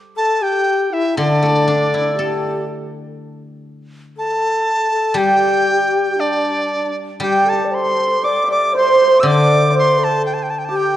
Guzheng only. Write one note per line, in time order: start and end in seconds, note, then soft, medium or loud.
0.00 0.15 G3 medium
1.17 4.16 D3 medium
1.43 3.41 A3 soft
1.68 3.66 D4 soft
1.94 3.92 E4 soft
2.19 4.17 A4 soft
5.14 7.19 G3 medium
7.20 10.23 G3 medium
9.23 10.97 D3 medium